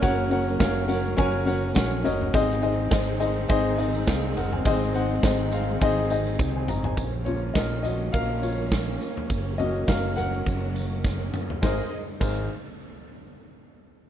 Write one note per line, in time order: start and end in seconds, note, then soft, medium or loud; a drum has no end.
0.00 0.56 F#1 loud
0.00 0.85 C#3 medium
0.00 2.32 F#3 medium
0.00 2.30 A#3 medium
0.00 2.30 C#4 medium
0.00 0.27 C#4 medium
0.00 0.27 F#4 medium
0.00 0.27 A#4 medium
0.00 0.27 C#5 loud
0.00 0.27 F#5 loud
0.00 kick loud
0.00 closed hi-hat loud
0.00 tambourine medium
0.30 0.55 C#4 medium
0.30 0.56 F#4 medium
0.30 0.56 A#4 medium
0.30 0.56 C#5 medium
0.30 0.56 F#5 medium
0.30 closed hi-hat medium
0.59 1.14 F#1 medium
0.59 0.84 C#4 medium
0.59 0.84 F#4 medium
0.59 0.85 A#4 medium
0.59 0.85 C#5 medium
0.59 0.85 F5 medium
0.59 kick loud
0.59 snare loud
0.59 closed hi-hat loud
0.59 tambourine medium
0.87 1.13 C#4 medium
0.87 1.13 F#4 medium
0.87 1.13 A#4 medium
0.87 1.13 C#5 medium
0.87 1.14 F#5 medium
0.87 closed hi-hat medium
0.87 tambourine medium
1.06 closed hi-hat medium
1.17 1.72 F#1 loud
1.17 1.42 C#4 loud
1.17 1.42 F#4 loud
1.17 1.42 A#4 loud
1.17 1.43 C#5 loud
1.17 1.43 G#5 loud
1.17 kick loud
1.17 closed hi-hat medium
1.46 1.71 C#4 medium
1.46 1.71 F#4 medium
1.46 1.71 A#4 medium
1.46 1.71 C#5 medium
1.46 1.72 F#5 medium
1.46 closed hi-hat medium
1.46 tambourine medium
1.74 2.03 A#1 medium
1.74 2.00 C#4 medium
1.74 2.00 F#4 medium
1.74 2.00 A#4 medium
1.74 2.00 C#5 medium
1.74 2.01 F#5 medium
1.74 kick loud
1.74 snare loud
1.74 closed hi-hat medium
1.74 tambourine medium
2.04 2.32 F#1 medium
2.04 2.29 C#4 medium
2.04 2.29 F#4 medium
2.04 2.29 A#4 medium
2.04 2.29 C#5 medium
2.04 2.30 D#5 loud
2.04 closed hi-hat medium
2.04 floor tom medium
2.04 tambourine medium
2.21 floor tom medium
2.33 2.88 G#1 loud
2.33 3.17 G#2 medium
2.33 3.17 D#3 medium
2.33 4.64 D#3 medium
2.33 6.94 G#3 medium
2.33 2.58 C4 loud
2.33 6.94 C4 medium
2.33 2.59 D#4 loud
2.33 2.59 G#4 medium
2.33 2.59 C5 loud
2.33 2.59 D#5 loud
2.33 kick loud
2.33 closed hi-hat loud
2.33 tambourine medium
2.51 snare soft
2.62 2.87 C4 medium
2.62 2.87 D#4 medium
2.62 2.88 G#4 medium
2.62 2.88 C5 medium
2.62 2.88 D#5 loud
2.62 closed hi-hat medium
2.90 3.46 G#1 loud
2.90 3.16 C4 medium
2.90 3.16 D#4 medium
2.90 3.16 G#4 medium
2.90 3.16 C5 medium
2.90 3.17 D#5 medium
2.90 kick loud
2.90 snare loud
2.90 closed hi-hat loud
2.90 tambourine medium
3.19 3.45 C4 medium
3.19 3.45 D#4 medium
3.19 3.45 G#4 medium
3.19 3.45 C5 medium
3.19 3.45 D#5 loud
3.19 closed hi-hat medium
3.19 tambourine medium
3.48 4.04 G#1 loud
3.48 3.74 C4 loud
3.48 3.74 D#4 loud
3.48 3.74 G#4 loud
3.48 3.74 C5 loud
3.48 3.75 D#5 loud
3.48 kick loud
3.48 closed hi-hat medium
3.78 4.03 C4 medium
3.78 4.03 D#4 medium
3.78 4.03 G#4 medium
3.78 4.03 C5 medium
3.78 4.03 D#5 loud
3.78 closed hi-hat medium
3.78 tambourine medium
3.95 closed hi-hat medium
4.07 4.35 C2 medium
4.07 4.36 G#4 medium
4.07 4.35 F5 medium
4.07 kick loud
4.07 snare loud
4.07 closed hi-hat medium
4.07 tambourine medium
4.37 4.64 F#1 medium
4.37 4.53 A#4 medium
4.37 4.52 F#5 medium
4.37 closed hi-hat medium
4.37 floor tom medium
4.37 tambourine medium
4.53 4.65 C5 medium
4.53 4.80 G#5 medium
4.53 floor tom medium
4.65 5.20 G#1 loud
4.65 5.49 G#2 medium
4.65 5.49 D#3 medium
4.65 6.96 D#3 medium
4.65 4.90 C4 loud
4.65 4.90 D#4 medium
4.65 4.91 G#4 medium
4.65 4.91 C5 loud
4.65 4.91 D#5 loud
4.65 kick loud
4.65 closed hi-hat loud
4.65 tambourine medium
4.82 snare soft
4.94 5.19 C4 medium
4.94 5.19 D#4 medium
4.94 5.20 G#4 medium
4.94 5.20 C5 medium
4.94 5.20 F#5 medium
4.94 closed hi-hat medium
4.94 tambourine soft
5.23 5.77 G#1 loud
5.23 5.48 C4 medium
5.23 5.48 D#4 medium
5.23 5.48 G#4 medium
5.23 5.48 C5 medium
5.23 5.48 D#5 medium
5.23 kick loud
5.23 snare loud
5.23 closed hi-hat loud
5.23 tambourine medium
5.51 5.77 C4 medium
5.51 5.77 D#4 medium
5.51 5.77 G#4 medium
5.51 5.77 C5 medium
5.51 5.78 F5 medium
5.51 closed hi-hat medium
5.51 tambourine medium
5.81 6.36 G#1 loud
5.81 6.06 C4 loud
5.81 6.06 D#4 loud
5.81 6.06 G#4 loud
5.81 6.06 C5 loud
5.81 6.07 D#5 loud
5.81 kick loud
5.81 closed hi-hat medium
5.81 tambourine soft
6.10 6.35 C4 medium
6.10 6.35 D#4 medium
6.10 6.36 G#4 medium
6.10 6.36 C5 medium
6.10 6.36 D#5 medium
6.10 closed hi-hat medium
6.10 tambourine medium
6.27 closed hi-hat medium
6.39 6.67 C2 medium
6.39 kick loud
6.39 high tom medium
6.39 tambourine medium
6.56 6.68 C5 medium
6.56 6.68 G#5 medium
6.68 6.95 G#1 medium
6.68 6.84 A#5 medium
6.68 mid tom medium
6.68 tambourine medium
6.84 7.13 C5 medium
6.84 7.13 G#5 medium
6.84 floor tom medium
6.97 7.51 A#1 medium
6.97 9.27 F3 medium
6.97 11.58 A#3 medium
6.97 11.58 C#4 medium
6.97 kick loud
6.97 closed hi-hat medium
6.97 tambourine soft
7.25 7.66 F3 soft
7.25 7.66 A#3 soft
7.25 7.67 C#4 medium
7.25 7.54 F4 medium
7.25 7.56 C#5 medium
7.25 closed hi-hat medium
7.25 floor tom medium
7.54 8.09 A#1 medium
7.54 7.83 A#4 medium
7.54 7.82 D#5 medium
7.54 kick loud
7.54 snare loud
7.54 closed hi-hat medium
7.54 tambourine medium
7.83 8.12 F#4 medium
7.83 8.11 D#5 medium
7.83 closed hi-hat medium
7.83 floor tom medium
7.83 tambourine soft
8.12 8.97 A#1 medium
8.12 8.41 A#4 medium
8.12 8.43 F5 loud
8.12 kick loud
8.12 closed hi-hat medium
8.12 tambourine soft
8.42 8.97 F4 medium
8.42 8.96 C#5 medium
8.42 closed hi-hat medium
8.42 tambourine soft
8.71 kick loud
8.71 snare loud
8.71 closed hi-hat medium
8.71 tambourine medium
9.01 closed hi-hat medium
9.01 tambourine soft
9.17 floor tom medium
9.30 9.84 F#1 loud
9.30 11.60 F#3 medium
9.30 kick loud
9.30 closed hi-hat medium
9.30 tambourine soft
9.58 9.99 F#3 medium
9.58 9.99 A#3 soft
9.58 9.99 C#4 medium
9.58 9.86 F#4 medium
9.58 9.86 D#5 medium
9.58 closed hi-hat medium
9.58 floor tom medium
9.87 10.42 F#1 medium
9.87 10.15 A#4 medium
9.87 10.18 F5 medium
9.87 kick loud
9.87 snare loud
9.87 closed hi-hat loud
9.87 tambourine medium
10.16 11.00 A#4 medium
10.16 11.00 F#5 medium
10.16 closed hi-hat medium
10.16 floor tom medium
10.16 tambourine medium
10.34 closed hi-hat soft
10.46 11.29 F#1 loud
10.46 kick loud
10.46 closed hi-hat medium
10.46 tambourine soft
10.76 closed hi-hat medium
10.76 tambourine medium
11.04 kick loud
11.04 snare medium
11.04 tambourine medium
11.34 mid tom medium
11.34 tambourine medium
11.50 floor tom medium
11.61 11.80 G#1 medium
11.61 11.89 G#3 medium
11.61 11.80 D#4 medium
11.61 11.89 G#4 medium
11.61 11.80 G#4 medium
11.61 11.89 A#4 medium
11.61 11.80 A#4 medium
11.61 11.89 C5 medium
11.61 11.80 C5 medium
11.61 11.89 D#5 medium
11.61 kick loud
11.61 snare medium
11.61 tambourine medium
12.20 12.47 G#1 medium
12.20 12.48 G#1 medium
12.20 12.48 D#4 medium
12.20 12.48 G#4 medium
12.20 12.47 A#4 medium
12.20 12.48 C5 medium
12.20 kick loud
12.20 crash medium
12.20 tambourine medium